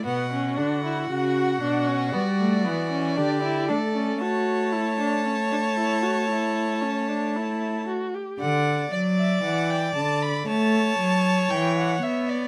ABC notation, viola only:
X:1
M:4/4
L:1/16
Q:1/4=58
K:D
V:1 name="Viola"
B, C D E F2 D C B, A, B, C D E D C | F2 E D C D E F E2 C D E2 F G | z16 |]